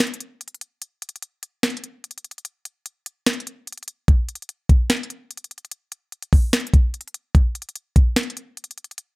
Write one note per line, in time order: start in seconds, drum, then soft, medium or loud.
0.00 snare loud
0.00 closed hi-hat soft
0.07 closed hi-hat medium
0.14 closed hi-hat medium
0.20 closed hi-hat medium
0.41 closed hi-hat medium
0.48 closed hi-hat soft
0.54 closed hi-hat soft
0.61 closed hi-hat medium
0.82 closed hi-hat medium
1.02 closed hi-hat medium
1.09 closed hi-hat medium
1.16 closed hi-hat soft
1.22 closed hi-hat medium
1.43 closed hi-hat medium
1.63 snare loud
1.63 closed hi-hat soft
1.70 closed hi-hat medium
1.77 closed hi-hat medium
1.84 closed hi-hat medium
2.04 closed hi-hat medium
2.11 closed hi-hat medium
2.18 closed hi-hat soft
2.24 closed hi-hat soft
2.31 closed hi-hat soft
2.38 closed hi-hat soft
2.45 closed hi-hat medium
2.65 closed hi-hat medium
2.86 closed hi-hat medium
3.06 closed hi-hat medium
3.27 snare loud
3.27 closed hi-hat medium
3.33 closed hi-hat medium
3.40 closed hi-hat medium
3.47 closed hi-hat medium
3.67 closed hi-hat medium
3.72 closed hi-hat medium
3.78 closed hi-hat soft
3.83 closed hi-hat soft
3.88 closed hi-hat medium
4.08 kick loud
4.08 closed hi-hat medium
4.29 closed hi-hat medium
4.35 closed hi-hat medium
4.42 closed hi-hat soft
4.49 closed hi-hat medium
4.69 kick medium
4.69 closed hi-hat medium
4.90 snare loud
4.90 closed hi-hat soft
4.97 closed hi-hat medium
5.03 closed hi-hat medium
5.10 closed hi-hat medium
5.31 closed hi-hat medium
5.37 closed hi-hat medium
5.44 closed hi-hat soft
5.51 closed hi-hat soft
5.58 closed hi-hat soft
5.65 closed hi-hat soft
5.71 closed hi-hat medium
5.92 closed hi-hat medium
6.12 closed hi-hat soft
6.22 closed hi-hat medium
6.33 kick medium
6.33 open hi-hat medium
6.53 snare loud
6.53 closed hi-hat soft
6.60 closed hi-hat medium
6.67 closed hi-hat medium
6.74 kick medium
6.74 closed hi-hat medium
6.94 closed hi-hat medium
7.01 closed hi-hat soft
7.08 closed hi-hat soft
7.14 closed hi-hat medium
7.35 kick loud
7.35 closed hi-hat medium
7.55 closed hi-hat medium
7.62 closed hi-hat medium
7.69 closed hi-hat soft
7.76 closed hi-hat medium
7.96 kick medium
7.96 closed hi-hat medium
8.16 snare loud
8.16 closed hi-hat soft
8.23 closed hi-hat medium
8.30 closed hi-hat medium
8.37 closed hi-hat medium
8.57 closed hi-hat medium
8.64 closed hi-hat medium
8.71 closed hi-hat soft
8.78 closed hi-hat soft
8.84 closed hi-hat soft
8.91 closed hi-hat soft
8.98 closed hi-hat medium